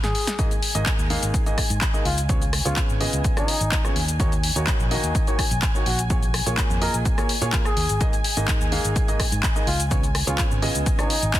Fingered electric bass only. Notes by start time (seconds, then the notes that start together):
0.03 G#1
0.75 G#1
0.99 D#2
1.23 G#1
1.70 G#2
2.05 C#2
2.65 C#2
2.89 G#1
3.13 C#2
3.61 G#1
3.96 D#2
4.56 D#2
4.80 A#1
5.04 D#2
5.51 A#1
5.86 A#1
6.46 A#1
6.70 F2
6.94 A#1
7.42 A#2
7.77 D#2
7.89 G#1
8.37 G#1
8.61 D#2
8.85 G#1
9.32 G#2
9.67 C#2
10.27 C#2
10.51 G#1
10.75 C#2
11.23 G#1